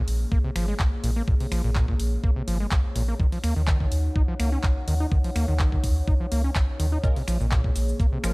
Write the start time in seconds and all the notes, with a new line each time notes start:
Already playing: A#3 G#4 C#5
0.08 A#1, open hi-hat
0.32 A#3, kick
0.44 C3
0.56 G#1 F3, finger snap, open hi-hat
0.68 G#3
0.80 kick, clap
1.04 A#1 A#2, open hi-hat
1.16 A#3
1.28 A#2, kick
1.40 C3, open hi-hat
1.51 A#1 F3, finger snap, open hi-hat
1.64 A#1 A#2
1.75 A#2, kick, clap
1.88 A#2, kick
1.99 A#1, open hi-hat
2.24 A#3, kick
2.36 C3
2.47 G#1 F3, open hi-hat
2.60 G#3
2.71 finger snap, kick, clap
2.95 A#1 A#2, open hi-hat
3.08 A#3
3.20 D#3 D#4 F#5, kick
3.32 F3, open hi-hat
3.44 D#2 A#3, finger snap, open hi-hat
3.56 D#2 D#3
3.67 D#3, kick, clap
3.80 D#3, kick
3.91 D#2, open hi-hat
4.16 D#4, kick
4.28 F3
4.39 C#2 A#3, finger snap, open hi-hat
4.52 C#4
4.63 kick, clap
4.88 D#2 D#3, open hi-hat
5.00 D#4
5.12 D#3, kick
5.24 F3, open hi-hat
5.36 D#2 A#3, finger snap, open hi-hat
5.48 D#2 D#3
5.59 D#3, kick, clap
5.72 D#3, kick
5.84 D#2, kick, open hi-hat
6.07 D#4, kick
6.20 F3
6.32 C#2 A#3, open hi-hat
6.44 C#4
6.55 finger snap, kick, clap
6.80 D#2 D#3, open hi-hat
6.92 D#4
7.04 A#2 G#3 A#3 C#4 F4 G#4 A#4, kick, closed hi-hat, shaker
7.16 C3, open hi-hat
7.28 A#1 F3, finger snap, closed hi-hat, open hi-hat, shaker
7.40 A#1 A#2, shaker
7.51 A#2, kick, snare, clap, closed hi-hat, shaker
7.64 A#2, kick
7.76 A#1, snare, closed hi-hat, open hi-hat, shaker
7.89 shaker
8.00 A#3, kick, closed hi-hat, shaker
8.12 C3
8.24 G#1 F3 G#3 C#4 F4 A#4, finger snap, closed hi-hat, open hi-hat, shaker